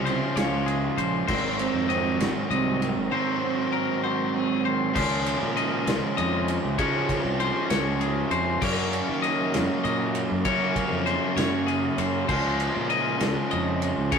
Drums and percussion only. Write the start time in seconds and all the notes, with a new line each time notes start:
0.06 ride
0.37 snare, ride
0.68 ride
0.98 ride
1.29 kick, crash
1.59 ride
1.90 ride
2.20 snare, ride
2.51 ride
2.82 ride
4.96 kick, crash
5.26 ride
5.57 ride
5.87 snare, ride
6.18 ride
6.48 ride
6.79 kick, ride
7.09 kick, ride
7.40 ride
7.70 snare, ride
8.01 ride
8.31 ride
8.62 kick, crash
8.93 ride
9.24 ride
9.54 snare, ride
9.85 ride
10.15 ride
10.45 kick, ride
10.76 kick, ride
11.07 ride
11.37 snare, ride
11.68 ride
11.98 ride
12.29 kick, crash
12.60 ride
12.90 ride
13.20 snare, ride
13.51 ride
13.82 ride
14.12 kick, ride